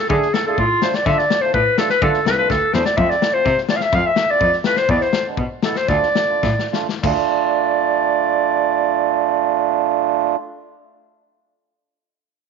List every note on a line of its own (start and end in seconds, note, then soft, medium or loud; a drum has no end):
0.09 0.18 D3 loud
0.09 0.28 A3 loud
0.09 0.28 D4 medium
0.09 0.28 G#4 medium
0.09 0.35 G#4 medium
0.09 kick medium
0.22 snare soft
0.34 0.46 A4 medium
0.34 snare loud
0.47 0.64 A3 medium
0.47 0.64 D4 medium
0.47 0.65 F4 medium
0.47 0.54 G#4 medium
0.47 0.50 A4 medium
0.52 0.60 A4 medium
0.58 0.66 A2 medium
0.58 0.84 F4 medium
0.58 kick medium
0.82 0.94 A3 medium
0.82 0.94 D4 medium
0.82 0.94 F4 medium
0.82 0.96 C5 medium
0.82 snare loud
0.94 1.08 D5 loud
0.94 snare medium
1.06 1.14 D3 loud
1.06 1.25 A3 medium
1.06 1.25 D4 medium
1.06 1.25 F4 loud
1.06 1.20 E5 loud
1.06 kick medium
1.06 snare soft
1.19 1.43 D5 medium
1.19 snare soft
1.30 snare loud
1.41 1.60 A3 medium
1.41 1.60 D4 medium
1.41 1.61 F4 medium
1.41 1.53 C5 loud
1.54 1.62 A2 medium
1.54 1.79 B4 medium
1.54 kick medium
1.78 1.90 A3 medium
1.78 1.90 D4 medium
1.78 1.90 F4 medium
1.78 1.90 A4 medium
1.78 snare loud
1.90 2.01 B4 loud
1.90 snare medium
2.02 2.10 D3 loud
2.02 2.20 A3 medium
2.02 2.20 D4 medium
2.02 2.20 F4 loud
2.02 2.24 A4 medium
2.02 kick loud
2.14 snare soft
2.26 2.34 C2 medium
2.26 2.38 B4 medium
2.26 snare loud
2.38 2.56 A3 medium
2.38 2.56 D4 medium
2.38 2.56 F4 medium
2.38 2.51 B4 loud
2.50 2.58 D2 medium
2.50 2.75 A4 medium
2.50 kick medium
2.50 snare medium
2.73 2.82 E2 medium
2.73 2.86 A3 medium
2.73 2.86 D4 medium
2.73 2.86 E4 medium
2.73 2.85 C5 medium
2.73 snare medium
2.85 2.99 D5 loud
2.85 snare medium
2.97 3.06 F2 loud
2.97 3.16 A3 medium
2.97 3.16 C4 medium
2.97 3.16 F4 loud
2.97 3.12 E5 loud
2.97 kick medium
3.10 3.35 D5 medium
3.10 snare soft
3.22 snare loud
3.34 3.52 A3 medium
3.34 3.52 C4 medium
3.34 3.52 F4 medium
3.34 3.57 C5 loud
3.45 3.53 C3 medium
3.45 kick medium
3.45 snare soft
3.58 snare soft
3.69 3.82 A3 medium
3.69 3.82 C4 medium
3.69 3.82 F4 medium
3.69 3.78 D5 medium
3.69 snare loud
3.76 3.84 F5 medium
3.80 3.96 E5 loud
3.80 snare medium
3.92 4.01 F2 medium
3.92 4.12 A3 medium
3.92 4.12 C4 medium
3.92 4.12 F4 medium
3.92 4.08 F5 medium
3.92 kick medium
3.92 snare soft
4.06 4.32 E5 loud
4.16 snare loud
4.29 4.47 A3 medium
4.29 4.47 C4 medium
4.29 4.47 F4 medium
4.29 4.54 D5 loud
4.41 4.49 F2 medium
4.41 kick medium
4.53 snare soft
4.64 4.77 A3 medium
4.64 4.77 C4 medium
4.64 4.77 F4 medium
4.64 4.79 B4 medium
4.64 snare loud
4.76 4.91 C5 loud
4.76 snare medium
4.89 4.97 E2 loud
4.89 5.08 G#3 medium
4.89 5.08 B3 medium
4.89 5.08 E4 medium
4.89 5.03 D5 medium
4.89 kick medium
5.01 5.26 C5 medium
5.01 snare soft
5.13 snare loud
5.26 5.44 G#3 medium
5.26 5.44 B3 medium
5.26 5.44 D4 medium
5.37 5.46 B2 medium
5.37 kick medium
5.62 5.76 G#3 medium
5.62 5.76 B3 medium
5.62 5.76 E4 medium
5.62 5.78 A4 medium
5.62 snare loud
5.75 5.89 C5 loud
5.75 snare medium
5.88 5.97 D2 medium
5.88 6.08 A3 medium
5.88 6.08 D4 medium
5.88 6.08 F4 loud
5.88 6.72 D5 medium
5.88 kick medium
5.88 snare soft
6.03 snare soft
6.15 snare loud
6.29 6.50 A3 medium
6.29 6.50 D4 medium
6.29 6.50 F4 medium
6.43 6.51 A2 loud
6.43 kick medium
6.43 snare medium
6.59 snare medium
6.72 6.87 A3 medium
6.72 6.87 D4 medium
6.72 6.87 F4 medium
6.72 snare medium
6.89 snare medium
7.02 7.12 D2 medium
7.02 10.36 A3 loud
7.02 10.36 D4 loud
7.02 10.36 F4 loud
7.02 10.35 D5 medium
7.02 kick medium
7.02 crash medium